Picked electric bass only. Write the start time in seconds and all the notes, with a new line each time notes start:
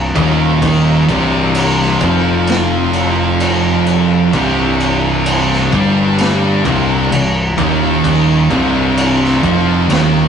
Already playing: C1
0.15 D#1
1.08 C1
2.01 F1
4.33 C1
5.72 G1
6.65 C1
7.11 C1
7.58 D#1
8.51 C1
9.43 F1
9.90 D#1